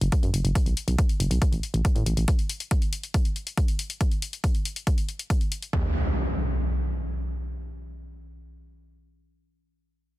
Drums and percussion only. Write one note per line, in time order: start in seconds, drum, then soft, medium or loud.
0.01 closed hi-hat soft
0.12 kick loud
0.12 closed hi-hat medium
0.23 closed hi-hat soft
0.34 closed hi-hat medium
0.45 closed hi-hat soft
0.55 kick loud
0.55 closed hi-hat medium
0.66 closed hi-hat soft
0.77 closed hi-hat medium
0.88 closed hi-hat soft
0.99 kick loud
0.99 closed hi-hat medium
1.09 closed hi-hat soft
1.20 closed hi-hat medium
1.31 closed hi-hat soft
1.42 kick loud
1.42 closed hi-hat medium
1.53 closed hi-hat soft
1.63 closed hi-hat soft
1.74 closed hi-hat soft
1.85 kick loud
1.85 closed hi-hat medium
1.96 closed hi-hat soft
2.06 closed hi-hat medium
2.17 closed hi-hat soft
2.28 kick loud
2.28 closed hi-hat medium
2.39 closed hi-hat soft
2.49 closed hi-hat medium
2.60 closed hi-hat soft
2.71 kick loud
2.71 closed hi-hat medium
2.82 closed hi-hat soft
2.93 closed hi-hat medium
3.03 closed hi-hat soft
3.14 kick loud
3.14 closed hi-hat medium
3.25 closed hi-hat soft
3.36 closed hi-hat soft
3.47 closed hi-hat soft
3.57 kick loud
3.57 closed hi-hat medium
3.68 closed hi-hat soft
3.79 closed hi-hat medium
3.90 closed hi-hat soft
4.01 kick loud
4.01 closed hi-hat loud
4.11 closed hi-hat soft
4.22 closed hi-hat medium
4.33 closed hi-hat soft
4.44 kick loud
4.44 closed hi-hat medium
4.55 closed hi-hat soft
4.65 closed hi-hat medium
4.76 closed hi-hat soft
4.87 kick loud
4.87 closed hi-hat medium
4.98 closed hi-hat soft
5.09 closed hi-hat soft
5.19 closed hi-hat soft
5.30 kick loud
5.30 closed hi-hat medium
5.41 closed hi-hat soft
5.52 closed hi-hat medium
5.62 closed hi-hat soft
5.73 kick loud
5.73 floor tom loud